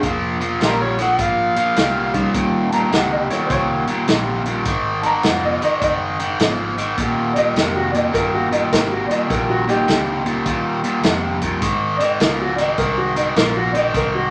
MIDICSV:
0, 0, Header, 1, 8, 480
1, 0, Start_track
1, 0, Tempo, 579710
1, 25, Time_signature, 4, 2, 24, 8
1, 11844, End_track
2, 0, Start_track
2, 0, Title_t, "Upright piano"
2, 0, Program_c, 0, 0
2, 32, Note_on_c, 0, 77, 72
2, 332, Note_off_c, 0, 77, 0
2, 2232, Note_on_c, 0, 81, 63
2, 2266, Note_on_c, 0, 82, 91
2, 2273, Note_off_c, 0, 81, 0
2, 2417, Note_off_c, 0, 82, 0
2, 2426, Note_on_c, 0, 78, 78
2, 2577, Note_off_c, 0, 78, 0
2, 2583, Note_on_c, 0, 75, 83
2, 2734, Note_on_c, 0, 73, 79
2, 2735, Note_off_c, 0, 75, 0
2, 2871, Note_on_c, 0, 72, 65
2, 2890, Note_off_c, 0, 73, 0
2, 2906, Note_off_c, 0, 72, 0
2, 2914, Note_on_c, 0, 73, 99
2, 3210, Note_off_c, 0, 73, 0
2, 4153, Note_on_c, 0, 81, 72
2, 4192, Note_on_c, 0, 82, 103
2, 4193, Note_off_c, 0, 81, 0
2, 4339, Note_off_c, 0, 82, 0
2, 4347, Note_on_c, 0, 78, 70
2, 4497, Note_off_c, 0, 78, 0
2, 4510, Note_on_c, 0, 75, 94
2, 4655, Note_off_c, 0, 75, 0
2, 4668, Note_on_c, 0, 75, 91
2, 4789, Note_on_c, 0, 74, 68
2, 4817, Note_off_c, 0, 75, 0
2, 4825, Note_off_c, 0, 74, 0
2, 4832, Note_on_c, 0, 75, 85
2, 5129, Note_off_c, 0, 75, 0
2, 6073, Note_on_c, 0, 74, 73
2, 6107, Note_on_c, 0, 75, 110
2, 6113, Note_off_c, 0, 74, 0
2, 6257, Note_off_c, 0, 75, 0
2, 6271, Note_on_c, 0, 70, 74
2, 6419, Note_off_c, 0, 70, 0
2, 6429, Note_on_c, 0, 66, 84
2, 6552, Note_on_c, 0, 74, 66
2, 6578, Note_off_c, 0, 66, 0
2, 6591, Note_on_c, 0, 75, 89
2, 6592, Note_off_c, 0, 74, 0
2, 6739, Note_off_c, 0, 75, 0
2, 6741, Note_on_c, 0, 70, 100
2, 6894, Note_off_c, 0, 70, 0
2, 6900, Note_on_c, 0, 66, 84
2, 7054, Note_off_c, 0, 66, 0
2, 7058, Note_on_c, 0, 75, 86
2, 7213, Note_off_c, 0, 75, 0
2, 7222, Note_on_c, 0, 70, 83
2, 7375, Note_off_c, 0, 70, 0
2, 7380, Note_on_c, 0, 66, 78
2, 7504, Note_on_c, 0, 74, 60
2, 7534, Note_off_c, 0, 66, 0
2, 7543, Note_on_c, 0, 75, 91
2, 7546, Note_off_c, 0, 74, 0
2, 7696, Note_off_c, 0, 75, 0
2, 7702, Note_on_c, 0, 70, 71
2, 7855, Note_off_c, 0, 70, 0
2, 7864, Note_on_c, 0, 66, 89
2, 8017, Note_off_c, 0, 66, 0
2, 8024, Note_on_c, 0, 63, 83
2, 8025, Note_on_c, 0, 67, 105
2, 8950, Note_off_c, 0, 63, 0
2, 8954, Note_off_c, 0, 67, 0
2, 9910, Note_on_c, 0, 74, 77
2, 9948, Note_on_c, 0, 75, 95
2, 9952, Note_off_c, 0, 74, 0
2, 10100, Note_off_c, 0, 75, 0
2, 10110, Note_on_c, 0, 70, 79
2, 10261, Note_off_c, 0, 70, 0
2, 10278, Note_on_c, 0, 66, 85
2, 10397, Note_on_c, 0, 74, 64
2, 10426, Note_off_c, 0, 66, 0
2, 10437, Note_off_c, 0, 74, 0
2, 10438, Note_on_c, 0, 75, 92
2, 10585, Note_on_c, 0, 70, 86
2, 10586, Note_off_c, 0, 75, 0
2, 10739, Note_off_c, 0, 70, 0
2, 10745, Note_on_c, 0, 66, 83
2, 10899, Note_off_c, 0, 66, 0
2, 10907, Note_on_c, 0, 75, 80
2, 11061, Note_off_c, 0, 75, 0
2, 11071, Note_on_c, 0, 70, 89
2, 11223, Note_off_c, 0, 70, 0
2, 11231, Note_on_c, 0, 66, 91
2, 11359, Note_on_c, 0, 74, 67
2, 11383, Note_off_c, 0, 66, 0
2, 11397, Note_on_c, 0, 75, 99
2, 11399, Note_off_c, 0, 74, 0
2, 11546, Note_off_c, 0, 75, 0
2, 11563, Note_on_c, 0, 70, 89
2, 11709, Note_off_c, 0, 70, 0
2, 11715, Note_on_c, 0, 66, 82
2, 11844, Note_off_c, 0, 66, 0
2, 11844, End_track
3, 0, Start_track
3, 0, Title_t, "Harmonica"
3, 0, Program_c, 1, 22
3, 534, Note_on_c, 1, 65, 63
3, 534, Note_on_c, 1, 67, 63
3, 534, Note_on_c, 1, 70, 90
3, 599, Note_off_c, 1, 65, 0
3, 601, Note_off_c, 1, 67, 0
3, 684, Note_on_c, 1, 73, 81
3, 696, Note_off_c, 1, 70, 0
3, 828, Note_off_c, 1, 73, 0
3, 844, Note_on_c, 1, 78, 73
3, 988, Note_off_c, 1, 78, 0
3, 997, Note_on_c, 1, 77, 88
3, 1918, Note_off_c, 1, 77, 0
3, 11844, End_track
4, 0, Start_track
4, 0, Title_t, "Reed electric piano"
4, 0, Program_c, 2, 4
4, 1767, Note_on_c, 2, 55, 70
4, 1769, Note_on_c, 2, 61, 59
4, 1773, Note_on_c, 2, 63, 61
4, 1774, Note_on_c, 2, 65, 70
4, 2382, Note_off_c, 2, 55, 0
4, 2383, Note_off_c, 2, 61, 0
4, 2385, Note_off_c, 2, 63, 0
4, 2385, Note_off_c, 2, 65, 0
4, 11844, End_track
5, 0, Start_track
5, 0, Title_t, "Overdriven electric guitar"
5, 0, Program_c, 3, 29
5, 24, Note_on_c, 3, 46, 73
5, 28, Note_on_c, 3, 53, 81
5, 306, Note_off_c, 3, 46, 0
5, 308, Note_off_c, 3, 53, 0
5, 333, Note_on_c, 3, 46, 67
5, 337, Note_on_c, 3, 53, 72
5, 484, Note_off_c, 3, 46, 0
5, 486, Note_off_c, 3, 53, 0
5, 499, Note_on_c, 3, 46, 81
5, 504, Note_on_c, 3, 55, 90
5, 782, Note_off_c, 3, 46, 0
5, 785, Note_off_c, 3, 55, 0
5, 812, Note_on_c, 3, 46, 71
5, 817, Note_on_c, 3, 53, 79
5, 963, Note_off_c, 3, 46, 0
5, 965, Note_off_c, 3, 53, 0
5, 979, Note_on_c, 3, 46, 70
5, 983, Note_on_c, 3, 53, 72
5, 1262, Note_off_c, 3, 46, 0
5, 1264, Note_off_c, 3, 53, 0
5, 1295, Note_on_c, 3, 46, 65
5, 1303, Note_on_c, 3, 53, 74
5, 1444, Note_off_c, 3, 46, 0
5, 1448, Note_off_c, 3, 53, 0
5, 1464, Note_on_c, 3, 46, 81
5, 1467, Note_on_c, 3, 55, 89
5, 1744, Note_off_c, 3, 46, 0
5, 1745, Note_off_c, 3, 55, 0
5, 1772, Note_on_c, 3, 46, 63
5, 1776, Note_on_c, 3, 53, 69
5, 1921, Note_off_c, 3, 46, 0
5, 1924, Note_off_c, 3, 53, 0
5, 1938, Note_on_c, 3, 39, 71
5, 1941, Note_on_c, 3, 46, 78
5, 2221, Note_off_c, 3, 39, 0
5, 2222, Note_off_c, 3, 46, 0
5, 2255, Note_on_c, 3, 39, 72
5, 2259, Note_on_c, 3, 46, 80
5, 2403, Note_off_c, 3, 39, 0
5, 2405, Note_off_c, 3, 46, 0
5, 2417, Note_on_c, 3, 39, 75
5, 2420, Note_on_c, 3, 48, 84
5, 2700, Note_off_c, 3, 39, 0
5, 2701, Note_off_c, 3, 48, 0
5, 2734, Note_on_c, 3, 39, 75
5, 2736, Note_on_c, 3, 46, 70
5, 2882, Note_off_c, 3, 39, 0
5, 2883, Note_off_c, 3, 46, 0
5, 2896, Note_on_c, 3, 39, 73
5, 2902, Note_on_c, 3, 46, 77
5, 3179, Note_off_c, 3, 39, 0
5, 3182, Note_off_c, 3, 46, 0
5, 3208, Note_on_c, 3, 39, 66
5, 3214, Note_on_c, 3, 46, 74
5, 3358, Note_off_c, 3, 39, 0
5, 3361, Note_off_c, 3, 46, 0
5, 3376, Note_on_c, 3, 39, 76
5, 3380, Note_on_c, 3, 48, 89
5, 3658, Note_off_c, 3, 39, 0
5, 3660, Note_off_c, 3, 48, 0
5, 3692, Note_on_c, 3, 39, 62
5, 3698, Note_on_c, 3, 46, 76
5, 3840, Note_off_c, 3, 39, 0
5, 3843, Note_off_c, 3, 46, 0
5, 3858, Note_on_c, 3, 44, 74
5, 3865, Note_on_c, 3, 51, 81
5, 4140, Note_off_c, 3, 44, 0
5, 4143, Note_off_c, 3, 51, 0
5, 4171, Note_on_c, 3, 44, 66
5, 4176, Note_on_c, 3, 51, 79
5, 4320, Note_off_c, 3, 44, 0
5, 4322, Note_off_c, 3, 51, 0
5, 4336, Note_on_c, 3, 44, 77
5, 4339, Note_on_c, 3, 53, 92
5, 4619, Note_off_c, 3, 44, 0
5, 4619, Note_off_c, 3, 53, 0
5, 4648, Note_on_c, 3, 44, 76
5, 4651, Note_on_c, 3, 51, 87
5, 4798, Note_off_c, 3, 44, 0
5, 4800, Note_off_c, 3, 51, 0
5, 4817, Note_on_c, 3, 44, 75
5, 4822, Note_on_c, 3, 51, 74
5, 5099, Note_off_c, 3, 44, 0
5, 5101, Note_off_c, 3, 51, 0
5, 5128, Note_on_c, 3, 44, 71
5, 5134, Note_on_c, 3, 51, 77
5, 5278, Note_off_c, 3, 44, 0
5, 5281, Note_off_c, 3, 51, 0
5, 5296, Note_on_c, 3, 44, 79
5, 5300, Note_on_c, 3, 53, 93
5, 5578, Note_off_c, 3, 44, 0
5, 5580, Note_off_c, 3, 53, 0
5, 5613, Note_on_c, 3, 44, 73
5, 5615, Note_on_c, 3, 51, 80
5, 5761, Note_off_c, 3, 44, 0
5, 5762, Note_off_c, 3, 51, 0
5, 5780, Note_on_c, 3, 39, 75
5, 5783, Note_on_c, 3, 46, 87
5, 6061, Note_off_c, 3, 39, 0
5, 6062, Note_off_c, 3, 46, 0
5, 6091, Note_on_c, 3, 39, 75
5, 6095, Note_on_c, 3, 46, 77
5, 6240, Note_off_c, 3, 39, 0
5, 6242, Note_off_c, 3, 46, 0
5, 6253, Note_on_c, 3, 39, 78
5, 6259, Note_on_c, 3, 48, 97
5, 6537, Note_off_c, 3, 39, 0
5, 6540, Note_off_c, 3, 48, 0
5, 6569, Note_on_c, 3, 39, 71
5, 6573, Note_on_c, 3, 46, 81
5, 6719, Note_off_c, 3, 39, 0
5, 6721, Note_off_c, 3, 46, 0
5, 6730, Note_on_c, 3, 39, 80
5, 6735, Note_on_c, 3, 46, 83
5, 7016, Note_off_c, 3, 39, 0
5, 7019, Note_off_c, 3, 46, 0
5, 7049, Note_on_c, 3, 39, 68
5, 7051, Note_on_c, 3, 46, 86
5, 7199, Note_off_c, 3, 39, 0
5, 7201, Note_off_c, 3, 46, 0
5, 7215, Note_on_c, 3, 39, 78
5, 7219, Note_on_c, 3, 48, 85
5, 7499, Note_off_c, 3, 39, 0
5, 7501, Note_off_c, 3, 48, 0
5, 7532, Note_on_c, 3, 39, 67
5, 7534, Note_on_c, 3, 46, 74
5, 7681, Note_off_c, 3, 39, 0
5, 7682, Note_off_c, 3, 46, 0
5, 7693, Note_on_c, 3, 39, 73
5, 7698, Note_on_c, 3, 46, 79
5, 7978, Note_off_c, 3, 39, 0
5, 7981, Note_off_c, 3, 46, 0
5, 8011, Note_on_c, 3, 39, 69
5, 8014, Note_on_c, 3, 46, 82
5, 8161, Note_off_c, 3, 39, 0
5, 8163, Note_off_c, 3, 46, 0
5, 8174, Note_on_c, 3, 39, 80
5, 8176, Note_on_c, 3, 48, 85
5, 8459, Note_off_c, 3, 39, 0
5, 8460, Note_off_c, 3, 48, 0
5, 8487, Note_on_c, 3, 39, 78
5, 8494, Note_on_c, 3, 46, 77
5, 8640, Note_off_c, 3, 39, 0
5, 8643, Note_off_c, 3, 46, 0
5, 8657, Note_on_c, 3, 39, 75
5, 8659, Note_on_c, 3, 46, 83
5, 8941, Note_off_c, 3, 39, 0
5, 8942, Note_off_c, 3, 46, 0
5, 8974, Note_on_c, 3, 39, 73
5, 8977, Note_on_c, 3, 46, 77
5, 9124, Note_off_c, 3, 39, 0
5, 9125, Note_off_c, 3, 46, 0
5, 9137, Note_on_c, 3, 39, 73
5, 9142, Note_on_c, 3, 48, 81
5, 9422, Note_off_c, 3, 39, 0
5, 9424, Note_off_c, 3, 48, 0
5, 9455, Note_on_c, 3, 39, 71
5, 9456, Note_on_c, 3, 46, 72
5, 9604, Note_off_c, 3, 39, 0
5, 9605, Note_off_c, 3, 46, 0
5, 9615, Note_on_c, 3, 44, 70
5, 9620, Note_on_c, 3, 51, 82
5, 9901, Note_off_c, 3, 44, 0
5, 9904, Note_off_c, 3, 51, 0
5, 9935, Note_on_c, 3, 44, 67
5, 9937, Note_on_c, 3, 51, 75
5, 10085, Note_off_c, 3, 44, 0
5, 10086, Note_off_c, 3, 51, 0
5, 10103, Note_on_c, 3, 44, 87
5, 10108, Note_on_c, 3, 53, 92
5, 10385, Note_off_c, 3, 44, 0
5, 10388, Note_off_c, 3, 53, 0
5, 10419, Note_on_c, 3, 44, 67
5, 10425, Note_on_c, 3, 51, 80
5, 10567, Note_off_c, 3, 44, 0
5, 10570, Note_off_c, 3, 51, 0
5, 10593, Note_on_c, 3, 44, 64
5, 10595, Note_on_c, 3, 51, 80
5, 10871, Note_off_c, 3, 44, 0
5, 10872, Note_off_c, 3, 51, 0
5, 10900, Note_on_c, 3, 44, 63
5, 10906, Note_on_c, 3, 51, 78
5, 11048, Note_off_c, 3, 44, 0
5, 11051, Note_off_c, 3, 51, 0
5, 11067, Note_on_c, 3, 44, 76
5, 11070, Note_on_c, 3, 53, 98
5, 11348, Note_off_c, 3, 44, 0
5, 11349, Note_off_c, 3, 53, 0
5, 11377, Note_on_c, 3, 44, 64
5, 11383, Note_on_c, 3, 51, 72
5, 11527, Note_off_c, 3, 44, 0
5, 11530, Note_off_c, 3, 51, 0
5, 11544, Note_on_c, 3, 44, 71
5, 11548, Note_on_c, 3, 51, 88
5, 11827, Note_off_c, 3, 44, 0
5, 11829, Note_off_c, 3, 51, 0
5, 11844, End_track
6, 0, Start_track
6, 0, Title_t, "Fingered electric bass"
6, 0, Program_c, 4, 33
6, 25, Note_on_c, 4, 29, 74
6, 489, Note_off_c, 4, 29, 0
6, 503, Note_on_c, 4, 34, 91
6, 967, Note_off_c, 4, 34, 0
6, 984, Note_on_c, 4, 32, 75
6, 1274, Note_off_c, 4, 32, 0
6, 1466, Note_on_c, 4, 36, 77
6, 1927, Note_off_c, 4, 36, 0
6, 1943, Note_on_c, 4, 39, 79
6, 2406, Note_off_c, 4, 39, 0
6, 2421, Note_on_c, 4, 37, 92
6, 2711, Note_off_c, 4, 37, 0
6, 2898, Note_on_c, 4, 36, 84
6, 3189, Note_off_c, 4, 36, 0
6, 3380, Note_on_c, 4, 34, 82
6, 3843, Note_off_c, 4, 34, 0
6, 3857, Note_on_c, 4, 32, 75
6, 4322, Note_off_c, 4, 32, 0
6, 4340, Note_on_c, 4, 29, 96
6, 4630, Note_off_c, 4, 29, 0
6, 4816, Note_on_c, 4, 30, 82
6, 5281, Note_off_c, 4, 30, 0
6, 5294, Note_on_c, 4, 32, 92
6, 5761, Note_off_c, 4, 32, 0
6, 5780, Note_on_c, 4, 27, 75
6, 6244, Note_off_c, 4, 27, 0
6, 6257, Note_on_c, 4, 29, 94
6, 6723, Note_off_c, 4, 29, 0
6, 6741, Note_on_c, 4, 31, 82
6, 7205, Note_off_c, 4, 31, 0
6, 7217, Note_on_c, 4, 32, 93
6, 7509, Note_off_c, 4, 32, 0
6, 7701, Note_on_c, 4, 34, 78
6, 8166, Note_off_c, 4, 34, 0
6, 8176, Note_on_c, 4, 37, 95
6, 8643, Note_off_c, 4, 37, 0
6, 8660, Note_on_c, 4, 39, 87
6, 9126, Note_off_c, 4, 39, 0
6, 9140, Note_on_c, 4, 41, 79
6, 9607, Note_off_c, 4, 41, 0
6, 9622, Note_on_c, 4, 44, 81
6, 10088, Note_off_c, 4, 44, 0
6, 10103, Note_on_c, 4, 37, 91
6, 10569, Note_off_c, 4, 37, 0
6, 10583, Note_on_c, 4, 36, 80
6, 11049, Note_off_c, 4, 36, 0
6, 11064, Note_on_c, 4, 34, 88
6, 11530, Note_off_c, 4, 34, 0
6, 11546, Note_on_c, 4, 36, 81
6, 11844, Note_off_c, 4, 36, 0
6, 11844, End_track
7, 0, Start_track
7, 0, Title_t, "Muted fingered electric bass strokes"
7, 1300, Note_on_c, 9, 29, 36
7, 1383, Note_off_c, 9, 29, 0
7, 2735, Note_on_c, 9, 29, 36
7, 2818, Note_off_c, 9, 29, 0
7, 3214, Note_on_c, 9, 29, 37
7, 3297, Note_off_c, 9, 29, 0
7, 7530, Note_on_c, 9, 29, 39
7, 7612, Note_off_c, 9, 29, 0
7, 11844, End_track
8, 0, Start_track
8, 0, Title_t, "Drums"
8, 24, Note_on_c, 9, 42, 75
8, 25, Note_on_c, 9, 36, 101
8, 107, Note_off_c, 9, 42, 0
8, 108, Note_off_c, 9, 36, 0
8, 341, Note_on_c, 9, 42, 59
8, 424, Note_off_c, 9, 42, 0
8, 503, Note_on_c, 9, 42, 70
8, 513, Note_on_c, 9, 38, 90
8, 586, Note_off_c, 9, 42, 0
8, 596, Note_off_c, 9, 38, 0
8, 816, Note_on_c, 9, 42, 59
8, 826, Note_on_c, 9, 38, 33
8, 899, Note_off_c, 9, 42, 0
8, 909, Note_off_c, 9, 38, 0
8, 983, Note_on_c, 9, 36, 97
8, 983, Note_on_c, 9, 42, 73
8, 1066, Note_off_c, 9, 36, 0
8, 1066, Note_off_c, 9, 42, 0
8, 1294, Note_on_c, 9, 42, 66
8, 1377, Note_off_c, 9, 42, 0
8, 1461, Note_on_c, 9, 42, 86
8, 1471, Note_on_c, 9, 38, 97
8, 1543, Note_off_c, 9, 42, 0
8, 1553, Note_off_c, 9, 38, 0
8, 1773, Note_on_c, 9, 42, 63
8, 1775, Note_on_c, 9, 36, 72
8, 1856, Note_off_c, 9, 42, 0
8, 1858, Note_off_c, 9, 36, 0
8, 1940, Note_on_c, 9, 42, 80
8, 1941, Note_on_c, 9, 36, 100
8, 2022, Note_off_c, 9, 42, 0
8, 2024, Note_off_c, 9, 36, 0
8, 2255, Note_on_c, 9, 42, 58
8, 2338, Note_off_c, 9, 42, 0
8, 2420, Note_on_c, 9, 42, 73
8, 2430, Note_on_c, 9, 38, 100
8, 2503, Note_off_c, 9, 42, 0
8, 2513, Note_off_c, 9, 38, 0
8, 2735, Note_on_c, 9, 42, 55
8, 2745, Note_on_c, 9, 38, 29
8, 2818, Note_off_c, 9, 42, 0
8, 2828, Note_off_c, 9, 38, 0
8, 2897, Note_on_c, 9, 42, 70
8, 2898, Note_on_c, 9, 36, 101
8, 2980, Note_off_c, 9, 42, 0
8, 2981, Note_off_c, 9, 36, 0
8, 3207, Note_on_c, 9, 42, 57
8, 3290, Note_off_c, 9, 42, 0
8, 3375, Note_on_c, 9, 42, 74
8, 3384, Note_on_c, 9, 38, 109
8, 3457, Note_off_c, 9, 42, 0
8, 3467, Note_off_c, 9, 38, 0
8, 3689, Note_on_c, 9, 42, 58
8, 3772, Note_off_c, 9, 42, 0
8, 3852, Note_on_c, 9, 42, 82
8, 3856, Note_on_c, 9, 36, 111
8, 3935, Note_off_c, 9, 42, 0
8, 3939, Note_off_c, 9, 36, 0
8, 4166, Note_on_c, 9, 42, 62
8, 4249, Note_off_c, 9, 42, 0
8, 4332, Note_on_c, 9, 42, 75
8, 4342, Note_on_c, 9, 38, 103
8, 4414, Note_off_c, 9, 42, 0
8, 4424, Note_off_c, 9, 38, 0
8, 4652, Note_on_c, 9, 42, 63
8, 4735, Note_off_c, 9, 42, 0
8, 4815, Note_on_c, 9, 42, 77
8, 4816, Note_on_c, 9, 36, 97
8, 4898, Note_off_c, 9, 42, 0
8, 4899, Note_off_c, 9, 36, 0
8, 5130, Note_on_c, 9, 42, 65
8, 5212, Note_off_c, 9, 42, 0
8, 5295, Note_on_c, 9, 42, 83
8, 5305, Note_on_c, 9, 38, 109
8, 5378, Note_off_c, 9, 42, 0
8, 5388, Note_off_c, 9, 38, 0
8, 5614, Note_on_c, 9, 42, 65
8, 5697, Note_off_c, 9, 42, 0
8, 5775, Note_on_c, 9, 42, 85
8, 5778, Note_on_c, 9, 36, 99
8, 5858, Note_off_c, 9, 42, 0
8, 5861, Note_off_c, 9, 36, 0
8, 6094, Note_on_c, 9, 42, 63
8, 6177, Note_off_c, 9, 42, 0
8, 6261, Note_on_c, 9, 42, 77
8, 6271, Note_on_c, 9, 38, 100
8, 6344, Note_off_c, 9, 42, 0
8, 6354, Note_off_c, 9, 38, 0
8, 6578, Note_on_c, 9, 42, 59
8, 6661, Note_off_c, 9, 42, 0
8, 6742, Note_on_c, 9, 36, 96
8, 6745, Note_on_c, 9, 42, 76
8, 6824, Note_off_c, 9, 36, 0
8, 6827, Note_off_c, 9, 42, 0
8, 7058, Note_on_c, 9, 42, 57
8, 7141, Note_off_c, 9, 42, 0
8, 7225, Note_on_c, 9, 42, 79
8, 7235, Note_on_c, 9, 38, 109
8, 7308, Note_off_c, 9, 42, 0
8, 7317, Note_off_c, 9, 38, 0
8, 7540, Note_on_c, 9, 42, 58
8, 7623, Note_off_c, 9, 42, 0
8, 7702, Note_on_c, 9, 36, 109
8, 7703, Note_on_c, 9, 42, 79
8, 7785, Note_off_c, 9, 36, 0
8, 7786, Note_off_c, 9, 42, 0
8, 8021, Note_on_c, 9, 42, 56
8, 8104, Note_off_c, 9, 42, 0
8, 8180, Note_on_c, 9, 42, 67
8, 8190, Note_on_c, 9, 38, 99
8, 8263, Note_off_c, 9, 42, 0
8, 8273, Note_off_c, 9, 38, 0
8, 8494, Note_on_c, 9, 42, 57
8, 8577, Note_off_c, 9, 42, 0
8, 8658, Note_on_c, 9, 42, 78
8, 8660, Note_on_c, 9, 36, 97
8, 8741, Note_off_c, 9, 42, 0
8, 8743, Note_off_c, 9, 36, 0
8, 8974, Note_on_c, 9, 42, 62
8, 9057, Note_off_c, 9, 42, 0
8, 9135, Note_on_c, 9, 42, 82
8, 9145, Note_on_c, 9, 38, 108
8, 9218, Note_off_c, 9, 42, 0
8, 9228, Note_off_c, 9, 38, 0
8, 9451, Note_on_c, 9, 42, 62
8, 9454, Note_on_c, 9, 36, 76
8, 9534, Note_off_c, 9, 42, 0
8, 9537, Note_off_c, 9, 36, 0
8, 9619, Note_on_c, 9, 42, 92
8, 9621, Note_on_c, 9, 36, 105
8, 9702, Note_off_c, 9, 42, 0
8, 9704, Note_off_c, 9, 36, 0
8, 9939, Note_on_c, 9, 42, 66
8, 10021, Note_off_c, 9, 42, 0
8, 10102, Note_on_c, 9, 42, 78
8, 10112, Note_on_c, 9, 38, 104
8, 10184, Note_off_c, 9, 42, 0
8, 10194, Note_off_c, 9, 38, 0
8, 10418, Note_on_c, 9, 42, 63
8, 10500, Note_off_c, 9, 42, 0
8, 10580, Note_on_c, 9, 42, 79
8, 10583, Note_on_c, 9, 36, 97
8, 10662, Note_off_c, 9, 42, 0
8, 10666, Note_off_c, 9, 36, 0
8, 10898, Note_on_c, 9, 42, 62
8, 10981, Note_off_c, 9, 42, 0
8, 11064, Note_on_c, 9, 42, 78
8, 11074, Note_on_c, 9, 38, 105
8, 11147, Note_off_c, 9, 42, 0
8, 11157, Note_off_c, 9, 38, 0
8, 11382, Note_on_c, 9, 42, 60
8, 11465, Note_off_c, 9, 42, 0
8, 11545, Note_on_c, 9, 36, 107
8, 11545, Note_on_c, 9, 42, 80
8, 11628, Note_off_c, 9, 36, 0
8, 11628, Note_off_c, 9, 42, 0
8, 11844, End_track
0, 0, End_of_file